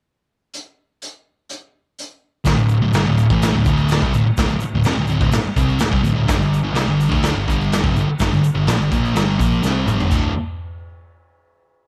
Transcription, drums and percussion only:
0.54 closed hi-hat medium
1.02 closed hi-hat medium
1.49 closed hi-hat medium
1.99 closed hi-hat medium
2.45 kick loud
2.45 snare loud
2.45 crash medium
2.45 shaker medium
2.58 shaker soft
2.69 shaker medium
2.93 snare loud
2.93 crash medium
2.93 shaker medium
3.18 shaker medium
3.30 kick loud
3.30 shaker soft
3.42 snare loud
3.42 crash medium
3.42 shaker loud
3.65 kick loud
3.65 shaker medium
3.77 shaker soft
3.88 snare loud
3.88 crash medium
3.88 shaker loud
4.02 kick loud
4.14 shaker medium
4.37 kick loud
4.37 snare loud
4.37 crash medium
4.37 shaker medium
4.49 shaker soft
4.60 shaker medium
4.84 snare loud
4.84 crash medium
4.84 shaker medium
5.07 shaker medium
5.21 kick loud
5.21 shaker soft
5.32 snare loud
5.32 crash medium
5.32 shaker loud
5.56 kick loud
5.56 shaker medium
5.69 shaker soft
5.79 snare loud
5.79 crash medium
5.79 shaker medium
5.93 kick loud
6.04 shaker medium
6.28 kick loud
6.28 snare loud
6.28 crash medium
6.28 shaker medium
6.42 shaker soft
6.54 shaker medium
6.75 snare loud
6.75 crash medium
6.75 shaker medium
7.00 shaker medium
7.12 kick loud
7.12 shaker soft
7.23 snare loud
7.23 crash medium
7.23 shaker medium
7.48 kick medium
7.48 shaker medium
7.61 shaker soft
7.72 snare loud
7.72 crash medium
7.72 shaker loud
7.84 kick loud
7.96 shaker medium
8.19 kick medium
8.19 snare loud
8.19 crash medium
8.19 shaker loud
8.33 shaker soft
8.44 shaker medium
8.67 snare loud
8.67 crash medium
8.67 shaker medium
8.81 shaker soft
8.92 kick loud
8.92 shaker medium
9.05 shaker soft
9.16 snare loud
9.16 crash medium
9.16 shaker medium
9.40 kick loud
9.40 shaker medium
9.51 shaker soft
9.63 snare medium
9.63 shaker loud
9.88 mid tom loud
9.88 shaker medium
9.99 floor tom loud
9.99 shaker soft
10.11 kick loud
10.11 crash medium
10.11 shaker medium

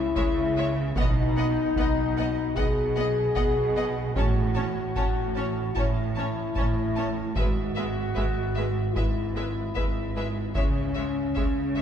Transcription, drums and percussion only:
0.16 taiko medium
0.96 taiko medium
1.76 taiko medium
2.57 taiko medium
3.36 taiko medium
4.16 taiko medium
4.96 taiko medium
5.76 taiko medium
6.56 taiko medium
7.36 taiko medium
8.17 taiko medium
8.96 taiko medium
9.77 taiko medium
10.55 taiko medium
11.37 taiko medium

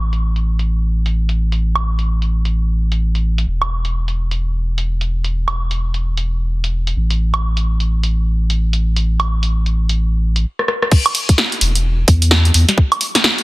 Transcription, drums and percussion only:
0.13 closed hi-hat medium
0.36 closed hi-hat soft
0.59 closed hi-hat medium
1.06 closed hi-hat medium
1.29 closed hi-hat soft
1.52 closed hi-hat medium
1.75 closed hi-hat soft
1.75 high woodblock medium
1.99 closed hi-hat medium
2.22 closed hi-hat soft
2.45 closed hi-hat medium
2.92 closed hi-hat medium
3.15 closed hi-hat soft
3.38 closed hi-hat medium
3.62 closed hi-hat soft
3.62 high woodblock medium
3.85 closed hi-hat medium
4.08 closed hi-hat soft
4.31 closed hi-hat medium
4.78 closed hi-hat medium
5.01 closed hi-hat soft
5.24 closed hi-hat medium
5.48 closed hi-hat soft
5.48 high woodblock medium
5.71 closed hi-hat medium
5.94 closed hi-hat soft
6.17 closed hi-hat medium
6.64 closed hi-hat medium
6.87 closed hi-hat medium
7.10 closed hi-hat medium
7.34 closed hi-hat soft
7.34 high woodblock medium
7.57 closed hi-hat medium
7.80 closed hi-hat soft
8.03 closed hi-hat medium
8.50 closed hi-hat medium
8.73 closed hi-hat medium
8.96 closed hi-hat medium
9.20 closed hi-hat soft
9.20 high woodblock medium
9.43 closed hi-hat medium
9.66 closed hi-hat soft
9.89 closed hi-hat medium
10.36 closed hi-hat medium
10.59 cross-stick medium
10.68 cross-stick medium
10.82 cross-stick medium
10.91 kick loud
10.91 crash loud
11.06 closed hi-hat soft
11.06 high woodblock medium
11.15 open hi-hat loud
11.29 kick medium
11.29 closed hi-hat medium
11.38 snare loud
11.52 closed hi-hat soft
11.61 open hi-hat loud
11.75 closed hi-hat medium
12.08 kick loud
12.08 open hi-hat loud
12.22 closed hi-hat medium
12.31 snare loud
12.45 closed hi-hat medium
12.54 open hi-hat loud
12.69 snare medium
12.69 closed hi-hat medium
12.78 kick loud
12.92 closed hi-hat soft
12.92 high woodblock medium
13.01 open hi-hat loud
13.15 snare medium
13.15 closed hi-hat medium
13.24 snare loud
13.38 closed hi-hat soft

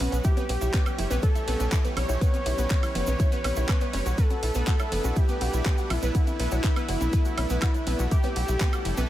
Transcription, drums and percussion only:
0.00 open hi-hat loud
0.00 ride medium
0.12 closed hi-hat soft
0.12 shaker medium
0.24 kick loud
0.24 closed hi-hat medium
0.24 ride medium
0.24 shaker medium
0.37 closed hi-hat soft
0.37 high bongo medium
0.37 high conga medium
0.37 shaker soft
0.49 open hi-hat loud
0.49 ride medium
0.61 closed hi-hat soft
0.61 shaker medium
0.73 kick loud
0.73 clap loud
0.73 closed hi-hat medium
0.73 ride medium
0.73 high bongo soft
0.73 high conga medium
0.73 shaker medium
0.86 closed hi-hat soft
0.86 high woodblock medium
0.86 shaker soft
0.98 open hi-hat loud
0.98 ride medium
0.98 low conga medium
1.11 closed hi-hat soft
1.11 high conga loud
1.11 shaker medium
1.23 kick loud
1.23 closed hi-hat medium
1.23 ride medium
1.23 high bongo medium
1.23 shaker medium
1.35 closed hi-hat soft
1.35 shaker soft
1.48 open hi-hat loud
1.48 ride medium
1.48 high conga medium
1.60 closed hi-hat soft
1.60 high bongo soft
1.60 shaker medium
1.72 kick loud
1.72 clap loud
1.72 closed hi-hat medium
1.72 ride medium
1.72 shaker medium
1.85 closed hi-hat soft
1.85 shaker soft
1.97 open hi-hat loud
1.97 ride medium
1.97 high conga medium
1.97 low conga medium
1.97 high woodblock medium
2.09 closed hi-hat soft
2.09 high bongo medium
2.09 shaker medium
2.21 kick loud
2.21 closed hi-hat medium
2.21 ride medium
2.21 shaker medium
2.34 closed hi-hat soft
2.34 high conga medium
2.34 shaker soft
2.46 open hi-hat loud
2.46 ride medium
2.46 high bongo soft
2.58 closed hi-hat soft
2.58 shaker medium
2.70 kick loud
2.70 clap loud
2.70 closed hi-hat medium
2.70 ride medium
2.70 high conga medium
2.70 shaker medium
2.83 open hi-hat medium
2.83 high woodblock medium
2.83 shaker soft
2.95 open hi-hat loud
2.95 ride medium
2.95 high bongo medium
2.95 low conga medium
3.07 closed hi-hat soft
3.07 high conga medium
3.07 shaker medium
3.19 kick loud
3.19 closed hi-hat medium
3.19 ride medium
3.19 low conga medium
3.19 shaker medium
3.32 closed hi-hat soft
3.32 high bongo soft
3.32 shaker soft
3.44 open hi-hat loud
3.44 ride medium
3.44 high conga medium
3.44 high woodblock medium
3.56 closed hi-hat soft
3.56 shaker medium
3.69 kick loud
3.69 clap loud
3.69 closed hi-hat medium
3.69 ride medium
3.69 high woodblock medium
3.69 shaker medium
3.81 closed hi-hat soft
3.81 high bongo medium
3.81 shaker soft
3.93 open hi-hat loud
3.93 ride medium
3.93 high conga medium
4.06 closed hi-hat soft
4.06 shaker medium
4.18 kick loud
4.18 closed hi-hat medium
4.18 ride medium
4.18 shaker medium
4.30 closed hi-hat soft
4.30 high bongo soft
4.30 high conga medium
4.30 shaker soft
4.43 open hi-hat loud
4.43 ride medium
4.54 closed hi-hat soft
4.54 shaker medium
4.67 kick loud
4.67 clap loud
4.67 closed hi-hat medium
4.67 ride medium
4.67 high conga medium
4.67 shaker medium
4.79 closed hi-hat soft
4.79 high bongo medium
4.79 high woodblock medium
4.79 shaker soft
4.92 open hi-hat loud
4.92 ride medium
4.92 low conga medium
5.04 closed hi-hat soft
5.04 high conga medium
5.04 shaker medium
5.16 kick loud
5.16 closed hi-hat medium
5.16 ride medium
5.16 high bongo soft
5.16 shaker medium
5.28 closed hi-hat soft
5.28 shaker soft
5.41 open hi-hat loud
5.41 ride medium
5.41 high conga medium
5.53 closed hi-hat soft
5.53 shaker medium
5.66 kick loud
5.66 clap loud
5.66 closed hi-hat medium
5.66 ride medium
5.66 high bongo medium
5.66 shaker medium
5.78 closed hi-hat soft
5.78 shaker soft
5.90 open hi-hat loud
5.90 ride medium
5.90 high conga medium
5.90 low conga medium
5.90 high woodblock medium
6.02 closed hi-hat soft
6.02 high bongo soft
6.02 shaker medium
6.15 kick loud
6.15 closed hi-hat medium
6.15 ride medium
6.15 shaker medium
6.27 closed hi-hat soft
6.27 high conga medium
6.27 shaker soft
6.40 open hi-hat loud
6.40 ride medium
6.51 closed hi-hat soft
6.51 high bongo medium
6.51 shaker medium
6.64 kick loud
6.64 clap loud
6.64 closed hi-hat medium
6.64 ride medium
6.64 high conga medium
6.64 shaker medium
6.76 closed hi-hat soft
6.76 high woodblock medium
6.76 shaker soft
6.89 open hi-hat loud
6.89 ride medium
6.89 high bongo soft
6.89 low conga medium
7.01 closed hi-hat soft
7.01 high conga loud
7.01 shaker medium
7.13 kick loud
7.13 closed hi-hat medium
7.13 ride medium
7.13 low conga medium
7.13 shaker medium
7.25 closed hi-hat soft
7.25 shaker soft
7.38 open hi-hat loud
7.38 ride medium
7.38 high bongo medium
7.38 high conga medium
7.38 high woodblock medium
7.50 closed hi-hat soft
7.50 shaker medium
7.62 kick loud
7.62 clap loud
7.62 closed hi-hat medium
7.62 ride medium
7.62 high woodblock medium
7.62 shaker medium
7.74 closed hi-hat soft
7.74 high bongo soft
7.74 shaker soft
7.87 open hi-hat loud
7.87 ride medium
7.87 high conga medium
7.99 closed hi-hat soft
7.99 shaker medium
8.11 kick loud
8.11 closed hi-hat medium
8.11 ride medium
8.11 shaker medium
8.23 closed hi-hat soft
8.23 high bongo medium
8.23 high conga medium
8.23 shaker soft
8.36 open hi-hat loud
8.36 ride medium
8.48 closed hi-hat soft
8.48 shaker medium
8.60 kick loud
8.60 clap loud
8.60 closed hi-hat medium
8.60 ride medium
8.60 high bongo soft
8.60 high conga medium
8.60 shaker medium
8.73 closed hi-hat soft
8.73 high woodblock medium
8.73 shaker soft
8.85 open hi-hat loud
8.85 ride medium
8.85 low conga medium
8.97 closed hi-hat soft
8.97 high conga loud
8.97 shaker medium

